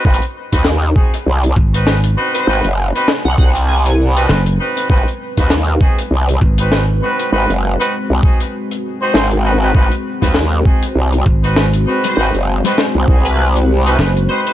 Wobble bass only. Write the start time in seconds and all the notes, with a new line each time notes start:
0.05 G#1
0.53 D#2
1.26 C2
2.47 G#1
2.64 F#1
3.25 C2
3.38 C2
4.90 G#1
5.37 D#2
6.11 C2
7.32 G#1
7.50 F#1
8.10 C2
9.14 G#1
9.75 G#1
10.22 D#2
10.95 C2
12.17 G#1
12.34 F#1
12.95 C2
13.08 C2